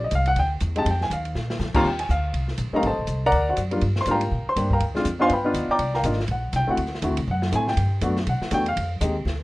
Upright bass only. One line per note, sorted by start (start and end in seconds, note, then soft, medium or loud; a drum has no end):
0.00 0.11 A#1 medium
0.12 0.36 C2 medium
0.36 0.60 D2 medium
0.61 0.85 E2 loud
0.85 1.10 F2 medium
1.10 1.34 D#2 medium
1.35 1.59 A#2 medium
1.59 1.73 F2 loud
1.74 muted upright bass stroke soft
1.84 2.08 D#2 medium
2.09 2.33 D2 medium
2.33 2.57 C2 medium
2.58 2.72 A#1 medium
2.72 muted upright bass stroke soft
2.83 2.91 A1 medium
2.90 2.98 G1 medium
2.99 3.07 D#1 medium
3.07 3.31 C2 medium
3.32 3.56 D2 medium
3.57 3.81 F#2 medium
3.82 4.06 G2 medium
4.06 4.31 G#2 loud
4.32 4.45 A#2 medium
4.46 muted upright bass stroke soft
4.56 4.80 G2 loud
4.80 5.04 D2 medium
5.05 5.29 F2 medium
5.30 5.53 G2 medium
5.54 5.68 D#2 medium
5.68 muted upright bass stroke soft
5.79 6.03 C2 medium
6.03 6.28 G#1 loud
6.28 6.52 A#1 medium
6.53 6.67 C2 loud
6.68 muted upright bass stroke soft
6.77 7.01 D2 medium
7.02 7.10 E2 medium
7.10 7.18 D2 medium
7.19 7.27 C2 medium
7.28 7.51 F#2 medium
7.52 7.76 A2 medium
7.77 8.01 G2 loud
8.01 8.26 F#2 medium
8.27 8.40 B2 medium
8.40 muted upright bass stroke soft
8.51 8.76 E2 loud
8.77 9.00 F2 medium
9.01 9.24 D#2 loud
9.25 9.43 D2 medium